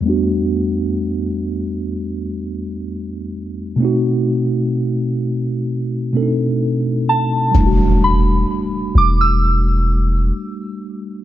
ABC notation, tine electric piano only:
X:1
M:4/4
L:1/8
Q:1/4=64
K:Em
V:1 name="Tine electric piano"
[E,,G,A,B,DF]8 | [B,,A,C^DF]4- [B,,A,CDF] [B,,A,C=D^DA]3 | [G,A,DEF]8 |]